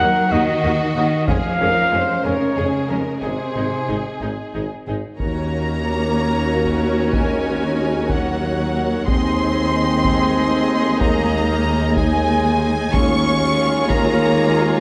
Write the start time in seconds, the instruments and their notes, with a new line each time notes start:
Already playing: french horn section D#3 D#4, cello section F#3, trumpet F#5
0.00 tuba D#2, double bass section D#2, viola section A#3 D#4, violin section A#4
0.30 tuba D#2, double bass section D#2, cello section D#3, viola section A#3 D#4, violin section F#4, trumpet D#5
0.63 tuba D#2, double bass section D#2, viola section A#3 D#4, violin section F#4
0.95 double bass section D#2, tuba D#2, cello section D#3, viola section A#3 D#4, violin section F#4, trumpet D#5
1.28 tuba F1, double bass section F2, cello section F3, french horn section G#3 C#4, viola section G#3 C#4, violin section G#4, trumpet F5, taiko
1.59 tuba F1, double bass section F2, viola section G#3 C#4, violin section G#4 A#4
1.92 tuba F1, double bass section F2, viola section G#3 C#4, violin section G#4 C5
2.24 tuba F1, double bass section F2, cello section C#3, viola section G#3 C#4, violin section G#4 A#4, trumpet C#5
2.56 tuba F1, double bass section F2, viola section G#3 C#4, violin section G#4
2.89 tuba F1, double bass section F2, viola section G#3 C#4, violin section G#4 A#4
3.22 tuba G#1, double bass section G#1, cello section C3, viola section G#3 D#4, french horn section D#4, violin section G#4, trumpet C5
3.55 tuba G#1, double bass section G#1, viola section G#3 D#4, violin section G#4
3.88 tuba G#1, double bass section G#1, viola section G#3 D#4, violin section G#4
4.21 double bass section G#1, tuba G#1, viola section G#3 D#4, violin section G#4
4.55 tuba G#1, double bass section G#1, viola section G#3 D#4, violin section G#4
4.87 double bass section G#1, tuba G#1, viola section G#3 D#4, violin section G#4
5.19 cello section D#2, tuba D#2, double bass section D#2, french horn section A#3, viola section C#4 F#4, violin section A#4 C#5 A#5, taiko
6.65 taiko
7.12 french horn section G#3, violin section G#5, taiko
8.10 french horn section F#3, violin section F#5, taiko
9.08 cello section D#2, tuba D#2, double bass section D#2, viola section G#3 D#4, french horn section C4, violin section G#4 D#5 C6, taiko
10.05 taiko
11.00 french horn section A#3, violin section A#5, taiko
11.96 french horn section G#3, violin section G#5, taiko
12.93 double bass section D#2, tuba D#2, cello section D#2, viola section G#3 F4, french horn section C#4, violin section G#4 C#5 C#6, taiko
13.89 french horn section A#3, violin section A#5, taiko